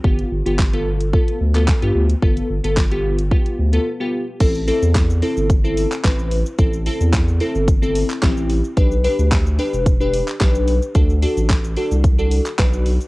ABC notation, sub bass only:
X:1
M:4/4
L:1/16
Q:1/4=110
K:Am
V:1 name="Sub bass" clef=bass
G,,,2 G,,, G,,,6- G,,, D,,3 G,, D,,2 | G,,,2 G,,, G,,,6- G,,, D,,2 z4 | A,,,3 E,,4 G,,,4- G,,, A,,,4 | A,,,3 E,,4 G,,,4- G,,, A,,,4 |
B,,,3 D,,4 E,,,4- E,,, B,,,4 | D,,3 A,,,4 C,,4- C,, B,,,4 |]